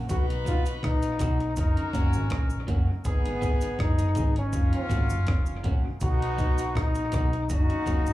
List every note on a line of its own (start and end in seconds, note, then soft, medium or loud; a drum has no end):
0.09 0.80 B1 loud
0.09 1.18 F#3 medium
0.09 1.18 D#4 medium
0.09 0.26 F#4 loud
0.09 1.18 B4 loud
0.09 kick loud
0.09 closed hi-hat medium
0.09 cabasa medium
0.29 0.36 B2 medium
0.29 closed hi-hat medium
0.45 0.66 F#3 medium
0.45 0.54 F#3 medium
0.45 0.66 B3 medium
0.45 0.54 B3 medium
0.45 0.67 D#4 medium
0.45 0.54 D#4 medium
0.45 0.64 F4 loud
0.45 0.67 F#4 loud
0.45 kick loud
0.45 closed hi-hat medium
0.45 cabasa medium
0.66 0.73 B2 medium
0.66 closed hi-hat medium
0.66 cabasa medium
0.83 1.18 A#1 loud
0.83 1.54 D#4 loud
0.83 kick loud
0.83 cross-stick loud
0.83 closed hi-hat loud
1.02 1.10 B2 medium
1.02 closed hi-hat medium
1.02 cabasa medium
1.19 1.54 B1 loud
1.19 1.40 F#3 medium
1.19 1.28 F#3 medium
1.19 1.39 B3 loud
1.19 1.28 B3 medium
1.19 1.28 D#4 medium
1.19 1.39 D#4 loud
1.19 1.38 F#4 loud
1.19 kick loud
1.19 cross-stick medium
1.19 closed hi-hat medium
1.19 cabasa medium
1.39 1.47 B2 medium
1.39 muted clean electric guitar stroke soft
1.39 closed hi-hat soft
1.56 1.75 F#1 loud
1.56 2.66 C#4 medium
1.56 1.97 D#4 loud
1.56 2.66 F#4 medium
1.56 2.66 A#4 loud
1.56 kick loud
1.56 closed hi-hat medium
1.56 cabasa medium
1.77 1.83 F#2 medium
1.77 1.83 C#3 medium
1.77 closed hi-hat medium
1.93 2.12 F#1 medium
1.93 2.01 F#3 medium
1.93 2.14 F#3 medium
1.93 2.02 A#3 medium
1.93 2.15 A#3 loud
1.93 2.02 C#4 medium
1.93 2.15 C#4 loud
1.93 2.69 C#4 medium
1.93 2.15 F#4 loud
1.93 kick medium
1.93 closed hi-hat medium
1.93 cabasa medium
2.13 2.31 G#1 loud
2.13 2.21 F#2 medium
2.13 2.21 C#3 medium
2.13 cabasa medium
2.30 2.65 A#1 loud
2.30 kick loud
2.30 cross-stick loud
2.30 closed hi-hat medium
2.50 2.58 F#2 medium
2.50 2.58 C#3 medium
2.50 cabasa medium
2.67 2.86 F#1 medium
2.67 2.88 F#3 medium
2.67 2.75 F#3 medium
2.67 2.76 A#3 medium
2.67 2.88 A#3 medium
2.67 2.89 C#4 medium
2.67 2.76 C#4 medium
2.67 2.89 F#4 medium
2.67 kick loud
2.67 closed hi-hat medium
2.87 2.94 F#2 medium
2.87 2.94 C#3 medium
3.05 3.75 G#1 loud
3.05 4.14 B3 medium
3.05 3.82 B3 loud
3.05 4.14 D#4 medium
3.05 4.14 G#4 loud
3.05 kick loud
3.05 closed hi-hat medium
3.05 cabasa medium
3.25 3.32 G#2 medium
3.25 3.32 D#3 medium
3.25 closed hi-hat medium
3.41 3.62 G#3 medium
3.41 3.50 G#3 medium
3.41 3.62 B3 medium
3.41 3.50 B3 medium
3.41 3.63 D#4 medium
3.41 3.50 D#4 medium
3.41 3.63 G#4 medium
3.41 kick loud
3.41 closed hi-hat medium
3.41 cabasa medium
3.61 3.69 G#2 medium
3.61 3.69 D#3 medium
3.61 closed hi-hat medium
3.61 cabasa medium
3.79 4.14 F#1 loud
3.79 4.37 D#4 loud
3.79 kick loud
3.79 cross-stick loud
3.79 closed hi-hat medium
3.99 4.06 G#2 medium
3.99 4.05 D#3 medium
3.99 closed hi-hat medium
3.99 cabasa medium
4.15 4.51 G#1 loud
4.15 4.36 G#3 medium
4.15 4.24 G#3 medium
4.15 4.35 B3 medium
4.15 4.24 B3 medium
4.15 4.34 D#4 loud
4.15 4.24 D#4 medium
4.15 4.34 G#4 medium
4.15 kick loud
4.15 closed hi-hat medium
4.15 cabasa medium
4.35 4.43 G#2 medium
4.35 4.43 D#3 medium
4.35 5.07 C#4 loud
4.35 muted clean electric guitar stroke medium
4.35 closed hi-hat medium
4.53 4.71 F#1 loud
4.53 5.62 A#3 medium
4.53 5.62 C#4 medium
4.53 5.62 F4 loud
4.53 kick loud
4.53 closed hi-hat medium
4.53 cabasa medium
4.73 4.80 F#2 medium
4.73 4.80 C#3 medium
4.73 closed hi-hat medium
4.89 5.08 G#1 medium
4.89 5.10 F#3 medium
4.89 4.98 F#3 medium
4.89 5.10 A#3 medium
4.89 4.98 A#3 medium
4.89 5.11 C#4 loud
4.89 4.98 C#4 medium
4.89 5.11 F#4 loud
4.89 kick medium
4.89 closed hi-hat medium
4.89 cabasa medium
5.10 5.27 F#1 medium
5.10 5.17 F#2 medium
5.10 5.17 C#3 medium
5.10 cabasa medium
5.27 5.62 F1 loud
5.27 kick loud
5.27 cross-stick loud
5.27 closed hi-hat medium
5.46 5.54 F#2 medium
5.46 5.54 C#3 medium
5.46 cabasa medium
5.64 5.82 A#1 medium
5.64 5.84 F#3 medium
5.64 5.72 F#3 medium
5.64 5.85 A#3 medium
5.64 5.72 A#3 medium
5.64 5.85 C#4 loud
5.64 5.72 C#4 medium
5.64 5.85 F#4 loud
5.64 kick loud
5.64 closed hi-hat medium
5.84 5.91 F#2 medium
5.84 5.91 C#3 medium
6.00 6.72 B1 loud
6.00 7.10 F#3 medium
6.00 7.10 B3 medium
6.00 7.10 D#4 loud
6.00 6.79 F#4 loud
6.00 kick loud
6.00 closed hi-hat medium
6.00 cabasa medium
6.22 6.28 B2 medium
6.22 closed hi-hat medium
6.38 6.58 F#3 medium
6.38 6.46 F#3 medium
6.38 6.59 B3 loud
6.38 6.46 B3 medium
6.38 6.46 D#4 loud
6.38 6.59 D#4 loud
6.38 6.59 F#4 loud
6.38 kick loud
6.38 closed hi-hat medium
6.38 cabasa medium
6.58 6.65 B2 medium
6.58 closed hi-hat medium
6.58 cabasa medium
6.75 7.10 A#1 loud
6.75 7.51 D#4 loud
6.75 kick loud
6.75 cross-stick loud
6.75 closed hi-hat medium
6.95 7.02 B2 medium
6.95 closed hi-hat medium
6.95 cabasa medium
7.12 7.47 B1 loud
7.12 7.20 F#3 medium
7.12 7.33 F#3 medium
7.12 7.20 B3 medium
7.12 7.32 B3 medium
7.12 7.20 D#4 medium
7.12 7.32 D#4 medium
7.12 7.31 F#4 loud
7.12 kick loud
7.12 cross-stick medium
7.12 closed hi-hat medium
7.12 cabasa medium
7.32 7.39 B2 medium
7.32 muted clean electric guitar stroke soft
7.32 closed hi-hat medium
7.49 7.68 F#1 loud
7.49 8.13 A#3 medium
7.49 8.13 C#4 medium
7.49 8.13 D#4 loud
7.49 8.13 F#4 loud
7.49 kick loud
7.49 closed hi-hat medium
7.49 cabasa medium
7.69 7.76 F#2 medium
7.69 7.76 C#3 medium
7.69 closed hi-hat medium
7.86 8.04 F1 loud
7.86 8.06 F#3 medium
7.86 7.94 F#3 medium
7.86 8.07 A#3 loud
7.86 7.94 A#3 medium
7.86 8.07 C#4 loud
7.86 7.94 C#4 medium
7.86 8.07 F#4 loud
7.86 kick medium
7.86 closed hi-hat medium
7.86 cabasa medium
8.06 8.13 F#1 medium
8.06 8.13 F#2 medium
8.06 8.13 C#3 medium
8.06 cabasa medium